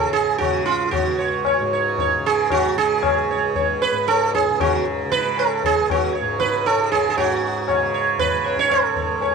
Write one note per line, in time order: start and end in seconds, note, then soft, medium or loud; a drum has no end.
0.00 1.03 C#2 medium
0.00 1.59 G#2 medium
0.00 0.44 C#3 medium
0.00 0.13 A4 medium
0.13 0.38 G#4 medium
0.38 0.65 F#4 medium
0.38 tabla na medium
0.38 tabla ge medium
0.44 2.18 C#3 medium
0.66 0.91 F4 medium
0.66 tabla te medium
0.91 1.68 F#4 medium
0.91 tabla tin medium
0.91 tabla ge medium
1.03 3.34 C#2 medium
1.19 1.44 C#5 soft
1.45 1.71 C#5 soft
1.45 tabla na medium
1.45 tabla ge medium
1.60 3.91 G#2 medium
1.73 1.98 C#5 soft
1.98 2.24 C#5 soft
1.98 tabla tin medium
1.98 tabla ge medium
2.18 2.76 C#3 medium
2.26 2.51 G#4 loud
2.50 2.77 F#4 loud
2.50 tabla na medium
2.50 tabla ge medium
2.76 4.49 C#3 medium
2.76 3.52 G#4 medium
3.03 3.29 C#5 soft
3.03 tabla na medium
3.03 tabla ge medium
3.29 3.55 C#5 soft
3.29 tabla te medium
3.35 5.65 C#2 medium
3.55 3.80 C#5 soft
3.55 tabla tin medium
3.55 tabla ge medium
3.82 4.09 B4 medium
3.82 tabla ke medium
3.92 6.21 G#2 medium
4.08 4.34 A4 loud
4.08 tabla na medium
4.34 4.59 G#4 medium
4.34 tabla tin medium
4.34 tabla ge medium
4.49 5.06 C#3 medium
4.60 4.85 F#4 medium
4.60 tabla na loud
4.60 tabla ge loud
5.06 6.77 C#3 medium
5.12 5.39 B4 loud
5.12 tabla ke medium
5.38 5.65 A4 medium
5.38 tabla na medium
5.64 8.87 C#2 medium
5.64 5.91 G#4 loud
5.64 tabla tin medium
5.64 tabla ge medium
5.90 6.15 F#4 medium
5.90 tabla na loud
5.90 tabla ge medium
6.15 6.39 C#5 soft
6.21 7.17 G#2 medium
6.40 6.67 B4 medium
6.40 tabla ke medium
6.66 6.90 A4 medium
6.66 tabla na medium
6.77 7.74 C#3 medium
6.92 7.09 G#4 medium
6.92 tabla tin medium
6.92 tabla ge medium
7.10 7.17 G#4 medium
7.17 9.35 G#2 soft
7.17 7.91 F#4 medium
7.17 7.41 C#5 soft
7.17 tabla tin loud
7.17 tabla ge medium
7.68 7.93 C#5 soft
7.68 tabla na medium
7.68 tabla ge medium
7.74 8.31 C#3 medium
7.94 8.18 C#5 soft
8.19 8.59 B4 medium
8.19 tabla tin medium
8.19 tabla ge medium
8.31 9.35 C#3 medium
8.45 8.58 C#5 soft
8.45 tabla na medium
8.57 8.72 C#5 medium
8.57 tabla ke medium
8.70 9.35 A4 medium
8.70 tabla na medium
8.70 tabla ge medium
8.88 9.35 C#2 medium
8.96 9.20 C#5 soft
8.96 tabla ge medium
9.21 9.35 C#5 soft
9.21 tabla na medium
9.21 tabla ge medium